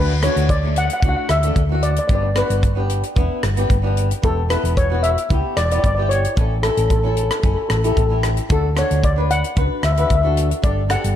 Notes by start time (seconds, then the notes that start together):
Already playing: D2 A3 D4 F#4 B4
0.23 A3 D4 F#4 C#5, cross-stick, closed hi-hat
0.36 D2, closed hi-hat
0.49 D5, kick, closed hi-hat
0.63 A3 D4 A4
0.76 F#5, closed hi-hat
0.85 F#5
0.90 F#5, closed hi-hat
1.00 C#2 A3 D4 F#5, kick, closed hi-hat
1.05 F#4 F#5
1.17 F#5
1.29 D2 E5, cross-stick, closed hi-hat
1.43 A3 D4 A4, closed hi-hat
1.56 D2, kick, closed hi-hat
1.69 A3 D4 F#4
1.82 D5, closed hi-hat
1.91 D5
1.96 D5, closed hi-hat
2.08 G1 B3 D4 G4 D5, kick, closed hi-hat
2.15 D5
2.23 D5
2.35 B3 D4 F#4 B4, cross-stick, closed hi-hat
2.50 G1, closed hi-hat
2.63 kick, closed hi-hat
2.75 B3 D4 G4
2.90 closed hi-hat
3.03 closed hi-hat
3.16 E1 B3 D4 E4, kick, closed hi-hat
3.43 G1, cross-stick, closed hi-hat
3.56 B3 D4 G4, closed hi-hat
3.70 G1, kick, closed hi-hat
3.82 B3 D4 G4
3.97 closed hi-hat
4.11 closed hi-hat
4.22 E1 B3 E4 G4 A4, kick, closed hi-hat
4.49 B3 E4 A4 B4, cross-stick, closed hi-hat
4.63 E1, closed hi-hat
4.77 C#5, kick, closed hi-hat
4.90 B3 E4 F#4
5.03 E5, closed hi-hat
5.18 closed hi-hat
5.29 C#2 B3 E4 G4, kick, closed hi-hat
5.57 E1 D5, cross-stick, closed hi-hat
5.65 D5
5.71 B3 E4 G4 D5, closed hi-hat
5.79 D5
5.84 G1 D5, kick, closed hi-hat
5.95 B3 E4 D5
5.99 G4
6.09 C#5, closed hi-hat
6.25 closed hi-hat
6.36 A1 C#4 E4 A4, kick, closed hi-hat
6.63 C#4 E4 A4, cross-stick, closed hi-hat
6.71 A4
6.77 A1 A4, closed hi-hat
6.85 A4
6.90 A4, kick, closed hi-hat
6.99 C#4 A4
7.04 E4 A4
7.15 A4, closed hi-hat
7.24 A4
7.31 A4, cross-stick, closed hi-hat
7.40 F#1 C#4 E4 A4, kick, closed hi-hat
7.44 A4
7.55 A4
7.62 A4
7.69 A1 A4, cross-stick, closed hi-hat
7.77 A4
7.83 C#4 E4 G4 A4, closed hi-hat
7.92 A4
7.97 A1 A4, kick, closed hi-hat
8.07 C#4 E4 A4
8.11 G4
8.23 cross-stick, closed hi-hat
8.37 closed hi-hat
8.49 D2 D4 F#4 A4, kick, closed hi-hat
8.75 D4 F#4 A4 C#5, cross-stick, closed hi-hat
8.91 D2, closed hi-hat
9.03 D5, kick, closed hi-hat
9.16 D4 F#4 B4
9.30 F#5, closed hi-hat
9.44 closed hi-hat
9.56 C#2 D4 F#4 B4, kick, closed hi-hat
9.83 D2 E5, cross-stick, closed hi-hat
9.92 D4 E5
9.97 F#4 B4 E5, closed hi-hat
10.07 D2 E5, kick, closed hi-hat
10.15 E5
10.21 D4 F#4 A4 E5
10.37 closed hi-hat
10.51 closed hi-hat
10.62 G1 D4 G4 A4 D5, kick, closed hi-hat
10.89 D4 G4 A4 F#5, cross-stick, closed hi-hat
11.04 G1, closed hi-hat